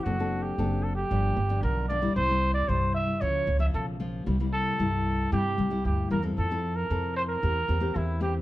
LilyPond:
<<
  \new Staff \with { instrumentName = "Trumpet" } { \time 4/4 \key c \mixolydian \tempo 4 = 114 fis'8. g'8. a'16 g'4~ g'16 bes'8 d''8 | c''8. d''16 c''8 e''8 des''8. e''16 a'8 r8 | r8 a'4. g'4 g'8 bes'8 | a'8. bes'8. c''16 bes'4~ bes'16 e'8 g'8 | }
  \new Staff \with { instrumentName = "Nylon-string guitar" } { \time 4/4 \key c \mixolydian << { <c' d' a'>16 <c' d' a'>8. <c' d' a'>8. r16 <f bes d'>8 r16 <f bes d'>8. <f bes d'>16 <g bes e'>16~ | <g bes e'>16 <g bes e'>8. <g bes e'>8. r16 <f bes f'>8 r16 <f bes f'>8. <f bes f'>8 | <g bes e'>16 <g bes e'>8. <g bes e'>4 <g bes e'>8 <g bes e'>16 <g bes e'>8. <g bes e'>16 <c' e' a'>16~ | <c' e' a'>16 <c' e' a'>8. <c' e' a'>4 <bes c' g'>16 r16 <bes c' g'>16 <bes c' g'>8. <bes c' g'>8 | } \\ { fis4 fis4 g,4 d4 | c4 g,4 des4 des4 | c4 g,4 c4 g,4 | f4 c4 e4 e4 | } >> }
  \new Staff \with { instrumentName = "Upright bass" } { \clef bass \time 4/4 \key c \mixolydian fis,,4 fis,,4 g,,8 g,,8 b,,4 | c,4 c,4 des,8 des,8 b,,4 | c,4 c,4 g,8 c,8 d,8 e,8 | f,4 f,4 e,8 e,8 e,4 | }
>>